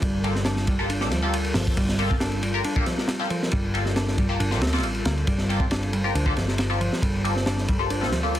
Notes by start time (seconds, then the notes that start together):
Already playing: G3 F4 A4 A#4
0.02 G1 G3, kick, ride
0.24 A#3 F4 G4 A4, ride
0.35 C4, snare
0.45 D4, snare, ride
0.56 snare
0.67 G3, kick, ride
0.79 A#3 F4 G4 A4
0.90 D4, ride
1.01 A#3 F4 G4 A4, snare
1.11 D2 F3, snare, ride
1.22 A#3 F4 G4 A4
1.34 ride
1.45 ride
1.54 G1 F3, snare, open hi-hat
1.67 kick
1.77 G1 G3, kick, ride
1.88 snare
1.99 A#3 F4 G4 A4, ride
2.10 C4, kick
2.20 D4, snare, ride
2.32 ride
2.43 G3, ride
2.54 A#3 F4 G4 A#4
2.64 D4, ride
2.76 A#3 F4 G4 A4, kick
2.86 F3, snare, ride
2.98 snare
3.08 snare, ride
3.19 A#3 F4 G4 A4
3.30 F3, ride
3.43 snare
3.51 G1 G3, kick, ride
3.74 A#3 F4 G4 A4, ride
3.85 C4, snare
3.96 D4, snare, ride
4.08 snare
4.18 G3, kick, ride
4.29 A#3 F4 G4 A4
4.40 G1 D4, ride
4.51 A#3 F4 G4 A4, snare
4.61 D2 C4, snare, ride
4.67 snare, ride
4.73 A#3 C4 F4 G4 A4, snare, ride
4.78 snare, ride
4.83 A1, ride
4.95 ride
5.05 D2 A#3, snare, ride
5.17 ride
5.27 G1 G3 C5, kick, ride
5.38 snare
5.49 A#3 F4 G4 A4, ride
5.60 C4, kick
5.71 D4, snare, ride
5.83 ride
5.93 G3, ride
6.04 A#3 F4 G4 A#4
6.15 D2 D4, ride
6.26 A#3 F4 G4 A4, kick
6.37 G1 F3, snare, ride
6.48 snare
6.58 snare, ride
6.70 A#3 F4 G4 A4
6.81 F3, ride
6.93 snare
7.02 G1 G3, kick, ride
7.24 A#3 F4 G4 A4, ride
7.36 C4, snare
7.46 D4, snare, ride
7.57 snare
7.68 G3, kick, ride
7.79 A#3 F4 G4 A4
7.90 D4, ride
8.01 A#3 F4 G4 A4, snare
8.12 D2 F3, snare, ride
8.23 A#3 F4 G4 A4
8.35 ride